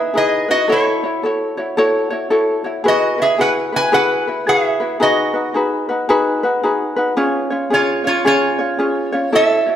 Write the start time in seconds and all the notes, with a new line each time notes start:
Already playing: D#4 E4 G#4 B4 E5
0.14 D#4 E4 G#4 B4 D#5
0.48 D#4 E4 F#4 B4 D#5
0.68 E4 F#4 A4 C#5
0.72 E4 C#5
1.04 E4 F#4 C#5
1.23 E4 F#4 A4 C#5
1.57 E4 F#4 C#5
1.77 E4 F#4 A4 C#5
2.10 E4 F#4 C#5
2.30 E4 F#4 A4 C#5
2.64 E4 F#4 C#5
2.84 E4 F#4 G#4 B4
2.88 F#4 D#5
3.18 E4 F#4 B4 E5
3.22 G#4
3.38 E4 F#4 G#4 B4 F#5
3.72 E4 F#4 B4 G#5
3.92 E4 F#4 G#4 B4 F#5
4.27 E4 F#4 B4
4.47 E4 F#4 G#4 B4 E5
4.80 E4 F#4 B4
5.00 D#4 F#4 G#4 B4 D#5
5.34 D#4 F#4 B4
5.54 D#4 F#4 G#4 B4
5.89 D#4 F#4 B4
6.09 D#4 F#4 G#4 B4
6.43 D#4 F#4 B4
6.63 D#4 F#4 G#4 B4
6.96 D#4 F#4 B4
7.17 C#4 F4 G#4 C#5
7.50 C#4 F4 C#5
7.70 C#4 F4 G#4 C#5
7.75 F4
8.04 C#4 F4 C#5
8.25 C#4 F4 G#4 C#5
8.59 C#4 F4 C#5
8.79 C#4 F4 G#4 C#5
9.12 C#4 F4 C#5
9.32 E4 F#4 A4 C#5 E5
9.66 E4 F#4 C#5